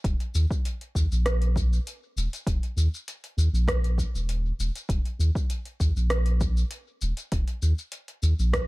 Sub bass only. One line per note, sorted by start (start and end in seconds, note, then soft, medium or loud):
0.04 0.15 D#1 medium
0.34 0.45 D#2 loud
0.95 1.06 D#2 medium
1.11 1.79 A#1 medium
2.16 2.27 D#1 medium
2.47 2.58 D#1 medium
2.76 2.88 D#2 loud
3.37 3.48 D#2 loud
3.52 4.06 A#1 medium
4.14 4.51 D#1 loud
4.59 4.70 D#1 loud
4.89 5.00 D#1 medium
5.19 5.30 D#2 medium
5.80 5.91 D#2 medium
5.96 6.64 A#1 medium
7.01 7.12 D#1 loud
7.32 7.43 D#1 medium
7.62 7.73 D#2 loud
8.22 8.33 D#2 medium
8.39 8.67 A#1 medium